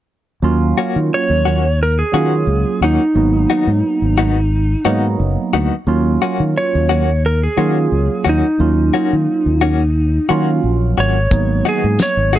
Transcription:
0.42 D#2 F#3 A#3 C#4 F4
0.78 A#3 C#4 F#4
0.96 D#3
1.14 C#5
1.30 D#2
1.45 A#3 C#4 F#4
1.83 A#4
1.99 G#4
2.12 D#3 F#3 A#3 C#4 F4 F#4
2.47 C#2
2.81 D#2 A#3 C#4 D#4 F#4
3.15 G#1 F#3 A#3 B3 D#4
3.50 D#3 B3 D#4 F#4
3.67 G#2
4.02 G#1
4.18 D#3 B3 D#4 F#4
4.85 G#2 D#3 F#3 A#3 B3 D#4 F#4
5.20 F#1
5.53 D2 D#3 B3 D#4 F#4
5.87 D#2 F#3 A#3 C#4 F4
6.22 A#3 C#4 F#4
6.40 D#3
6.58 C#5
6.75 D#2
6.89 A#3 C#4 F#4
7.26 A#4
7.43 G#4
7.57 D#3 F#3 A#3 C#4 F4 F#4
7.92 C#2
8.25 D#2 A#3 C#4 F#4
8.29 D#4
8.59 D#2 F#3 A#3 C#4 F4
8.94 A#3 C#4 F#4
9.13 D#3
9.46 D#2
9.61 A#3 C#4 F#4
10.29 D#3 F#3 A#3 C#4 F4 F#4
10.64 A#1
10.98 G#1 A#3 C#4 F#4 C#5
11.30 G#1 F#3 A#3 B3 D#4, kick, closed hi-hat
11.65 D#3 B3 D#4 F#4 G#4, closed hi-hat
11.84 G#2
11.99 C#5, snare, closed hi-hat, tambourine
12.17 G#1
12.33 D#3 B3 D#4 F#4 G#4, closed hi-hat

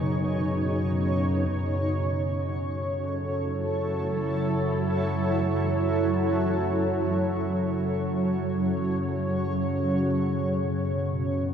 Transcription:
Already playing: F#2 B2 C#3 D#4 G#4 C#5
1.48 F#2 C#3 F#3
1.99 A4
2.51 E4
9.81 B2

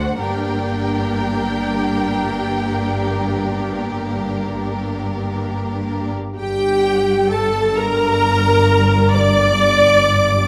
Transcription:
Already playing: D2 A3 D4 F#4 C5 F#5
0.19 G1 G2 A#3 D4 G4 A#4 G5
6.37 G1 G2 G4 G5
7.32 A4 A5
7.76 A#4 A#5
9.12 D5 D6

